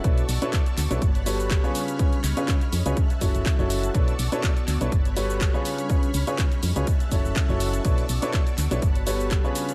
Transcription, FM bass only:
X:1
M:4/4
L:1/16
Q:"Swing 16ths" 1/4=123
K:Bm
V:1 name="FM bass" clef=bass
B,,, z B,,, z3 D,, B,,, G,,,4- G,,, z3 | z2 C,, z3 ^E,, C,, z2 F,,, F,,, z F,,,3 | B,,, z B,,, z3 D,, B,,, z8 | z2 C,, z3 ^E,, C,, z2 F,,, F,,, z F,,,3 |
B,,, z B,,, z3 D,, B,,, z8 |]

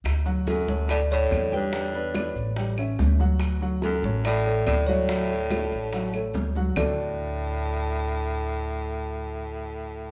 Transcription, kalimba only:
X:1
M:4/4
L:1/8
Q:1/4=143
K:D
V:1 name="Kalimba"
z2 A2 d c2 B- | B3 z4 z | z2 A2 d2 d c- | c6 z2 |
d8- | d8 |]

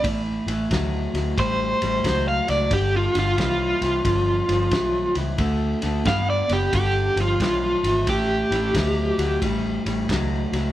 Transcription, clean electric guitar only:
X:1
M:4/4
L:1/8
Q:"Swing" 1/4=90
K:Ador
V:1 name="Clean electric guitar" clef=bass
[A,,E,] [A,,E,] [A,,F,] [A,,F,] [A,,G,] [A,,G,] [A,,F,] [A,,F,] | [G,,D,] [G,,D,] [G,,E,] [G,,E,] [G,,=F,] [G,,F,] [G,,E,] [G,,E,] | [D,A,] [D,A,] [D,B,] [D,B,] [G,,D,] [G,,=F,] [G,,E,] [G,,E,] | [A,,E,] [A,,E,] [A,,F,] [A,,F,] [A,,G,] [A,,G,] [A,,F,] [A,,F,] |]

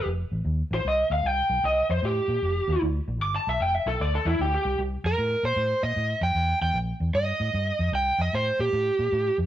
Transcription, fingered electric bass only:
X:1
M:4/4
L:1/8
Q:"Swing" 1/4=152
K:F
V:1 name="Fingered electric bass" clef=bass
F,,, A,,, _E,, A,,, C,, D,, C,, =B,,, | C,, F,, A,, B,, F,,, _E,, D,, B,,, | G,,, =B,,, F,,, B,,, D,, E,, D,, C,, | C,, F,, A,, B,, A,, B,, A,, F,, |
E,, E,, B,,, E,, G,, A,, G,, F,, | C,, F,, A,, B,, A,, B,, A,, F,, |]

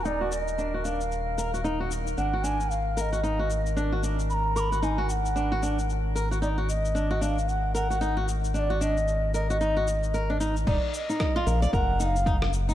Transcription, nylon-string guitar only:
X:1
M:4/4
L:1/16
Q:"Swing 16ths" 1/4=113
K:Abdor
V:1 name="Nylon-string guitar"
E G z2 =D G D z3 B G E G z2 | =D G D z3 B G E G z2 D G D z | z2 B G E G z2 =D G D z3 B G | E G z2 =D G D z3 B G E G z2 |
=D G D z3 B G E G z2 B D E z | E z2 E2 F B =d B2 E z E z2 E |]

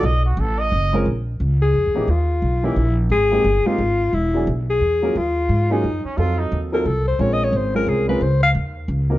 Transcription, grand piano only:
X:1
M:3/4
L:1/8
Q:"Swing" 1/4=176
K:Bbm
V:1 name="Grand piano"
z4 z [A,CD^EB] | z4 z [=E,B,D_E=G] | z3 [_F,B,DE=G] z2 | z [A,B,CE=G] z [A,B,CEG] z2 |
z [^F,=B,=D=E^G] z3 [F,_B,_D=FB] | z3 [G,B,DFA] z2 | [G,CEF=A]3 [G,CEFA] z2 | [A,CDFB]3 [A,CDFB]2 [A,CDFB] |
z4 z [B,CEGB] |]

